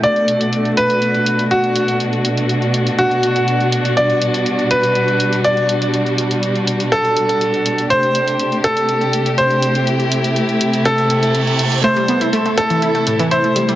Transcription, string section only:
0.00 7.86 B2 medium
0.00 3.93 A3 medium
0.00 9.83 D4 medium
0.00 7.86 F#4 medium
3.97 7.86 G3 medium
7.90 13.75 C3 medium
7.90 13.75 A3 medium
7.90 11.80 G4 medium
9.87 11.82 E4 medium
11.84 13.75 E4 medium
11.84 13.75 A4 medium

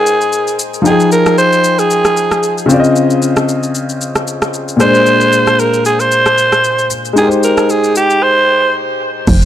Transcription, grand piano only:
0.00 0.80 G#3 medium
0.00 0.81 D#4 medium
0.00 0.87 C5 medium
0.00 0.82 G5 medium
0.82 2.64 F3 medium
0.82 2.65 D#4 medium
0.87 2.68 G#4 medium
0.87 2.67 G5 medium
2.66 4.74 C#3 medium
2.66 4.76 C4 medium
2.71 4.77 F4 medium
2.71 2.78 D5 medium
2.80 4.81 D#5 medium
4.77 6.85 A#2 medium
4.77 6.86 G#3 medium
4.82 6.87 D4 medium
4.82 6.89 C5 medium
7.13 9.22 G#3 medium
7.13 9.23 D#4 medium
7.18 9.24 G4 medium
7.18 7.26 A#4 medium
7.27 9.29 C5 medium

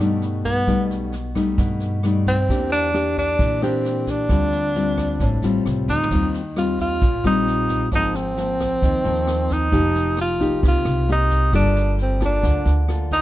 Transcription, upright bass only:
0.00 0.63 G2 medium
0.68 1.54 B1 medium
1.58 2.45 G2 medium
2.49 3.36 E2 medium
3.39 4.26 A#2 medium
4.29 5.16 D2 medium
5.20 5.42 A1 medium
5.42 5.63 A1 medium
5.66 5.86 C2 medium
5.88 6.09 D2 medium
6.11 6.98 D#2 medium
7.02 7.12 A#1 medium
7.24 7.92 A#1 medium
7.92 8.78 G#1 medium
8.82 8.93 D#2 medium
9.05 9.74 D#2 medium
9.72 10.59 F1 medium
10.63 10.74 C2 medium
10.85 11.54 C2 medium
11.53 12.40 G1 medium
12.44 12.54 D2 medium
12.65 13.22 D2 medium

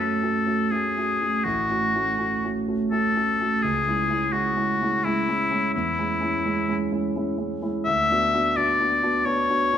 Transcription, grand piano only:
0.00 1.47 F#2 soft
0.00 0.22 A3 soft
0.00 0.23 C#4 soft
0.00 0.23 F#4 soft
0.22 0.44 A3 soft
0.22 0.45 C#4 soft
0.22 0.45 F#4 soft
0.46 0.68 A3 soft
0.46 0.69 C#4 soft
0.46 0.69 F#4 soft
0.71 0.94 A3 soft
0.71 0.93 C#4 soft
0.71 0.94 F#4 soft
0.97 1.18 A3 soft
0.97 1.19 C#4 soft
0.97 1.19 F#4 soft
1.21 1.43 A3 soft
1.21 1.43 C#4 soft
1.21 1.43 F#4 soft
1.45 1.69 A1 soft
1.70 1.92 A3 soft
1.70 1.92 C#4 soft
1.70 1.92 F#4 soft
1.95 2.17 A3 soft
1.95 2.17 C#4 soft
1.95 2.17 F#4 soft
2.18 2.41 A3 soft
2.18 2.41 C#4 soft
2.18 2.41 F#4 soft
2.44 2.65 A3 soft
2.44 2.66 C#4 soft
2.44 2.66 F#4 soft
2.68 2.89 A3 soft
2.68 2.89 C#4 soft
2.68 2.90 F#4 soft
2.91 3.13 A3 soft
2.91 3.13 C#4 soft
2.91 3.14 F#4 soft
3.15 3.37 A3 soft
3.15 3.37 C#4 soft
3.15 3.37 F#4 soft
3.40 3.61 A3 soft
3.40 3.61 C#4 soft
3.40 3.61 F#4 soft
3.64 3.86 C#2 soft
3.88 4.07 G#3 soft
3.88 4.08 C#4 soft
3.88 4.08 E4 soft
4.09 4.30 G#3 soft
4.09 4.30 C#4 soft
4.09 4.31 E4 soft
4.33 4.54 G#3 soft
4.33 4.54 C#4 soft
4.33 4.54 E4 soft
4.56 4.77 G#3 soft
4.56 4.78 C#4 soft
4.56 4.77 E4 soft
4.82 5.02 G#3 soft
4.82 5.02 C#4 soft
4.82 5.02 E4 soft
5.05 5.25 G#3 soft
5.05 5.25 C#4 soft
5.05 5.26 E4 soft
5.28 5.48 G#3 soft
5.28 5.49 C#4 soft
5.28 5.49 E4 soft
5.51 5.72 G#3 soft
5.51 5.71 C#4 soft
5.51 5.72 E4 soft
5.76 5.97 E2 soft
5.99 6.19 G#3 soft
5.99 6.19 C#4 soft
5.99 6.19 E4 soft
6.21 6.41 G#3 soft
6.21 6.42 C#4 soft
6.21 6.42 E4 soft
6.46 6.66 G#3 soft
6.46 6.66 C#4 soft
6.46 6.66 E4 soft
6.68 6.88 G#3 soft
6.68 6.89 C#4 soft
6.68 6.89 E4 soft
6.91 7.11 G#3 soft
6.91 7.12 C#4 soft
6.91 7.12 E4 soft
7.16 7.36 G#3 soft
7.16 7.36 C#4 soft
7.16 7.36 E4 soft
7.38 7.59 G#3 soft
7.38 7.59 C#4 soft
7.38 7.59 E4 soft
7.62 7.83 G#3 soft
7.62 7.83 C#4 soft
7.62 7.84 E4 soft
7.86 8.09 D2 soft
8.10 8.31 B3 soft
8.10 8.31 D4 soft
8.10 8.32 F#4 soft
8.34 8.54 B3 soft
8.34 8.54 D4 soft
8.34 8.55 F#4 soft
8.57 8.78 B3 soft
8.57 8.78 D4 soft
8.57 8.78 F#4 soft
8.80 9.01 B3 soft
8.80 9.01 D4 soft
8.80 9.01 F#4 soft
9.03 9.24 B3 soft
9.03 9.24 D4 soft
9.03 9.24 F#4 soft
9.25 9.47 B3 soft
9.25 9.48 D4 soft
9.25 9.48 F#4 soft
9.49 9.72 B3 soft
9.49 9.72 D4 soft
9.49 9.72 F#4 soft
9.73 9.78 B3 soft
9.73 9.78 D4 soft
9.73 9.78 F#4 soft

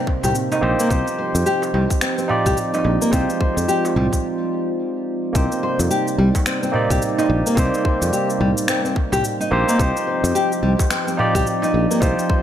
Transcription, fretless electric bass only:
0.24 0.32 C2 medium
0.63 0.74 A#1 medium
0.91 1.02 C2 medium
1.35 1.43 F2 medium
1.74 1.86 C2 medium
2.46 2.54 C2 medium
2.85 2.97 A#1 medium
3.13 3.24 C2 loud
3.57 3.65 F2 medium
3.96 4.08 C2 medium
5.35 5.47 C2 loud
5.80 5.87 F2 loud
6.18 6.30 C2 medium
6.90 6.98 C2 medium
7.30 7.41 A#1 loud
7.57 7.69 C2 loud
8.02 8.09 F2 medium
8.41 8.52 C2 medium
9.12 9.20 C2 medium
9.52 9.63 A#1 medium
9.79 9.91 C2 loud
10.24 10.32 F2 loud
10.63 10.74 C2 medium
11.35 11.43 C2 loud
11.74 11.86 A#1 loud
12.02 12.13 C2 loud

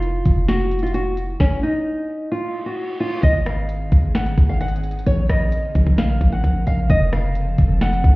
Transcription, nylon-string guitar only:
0.00 0.44 F4 medium
0.48 0.81 F#4 medium
0.83 0.93 F4 medium
0.94 1.14 F#4 medium
1.40 1.60 C#4 loud
1.63 2.28 D#4 medium
2.32 2.64 F4 medium
2.66 2.98 F#4 medium
3.00 3.20 F4 medium
3.23 3.43 D#5 loud
3.46 4.11 F5 medium
4.15 4.47 F#5 medium
4.49 4.59 F5 medium
4.61 4.80 F#5 medium
5.06 5.26 C#5 loud
5.29 5.94 D#5 medium
5.98 6.30 F5 medium
6.32 6.65 F#5 medium
6.67 6.86 F5 medium
6.90 7.09 D#5 loud
7.13 7.77 F5 medium
7.81 8.14 F#5 medium

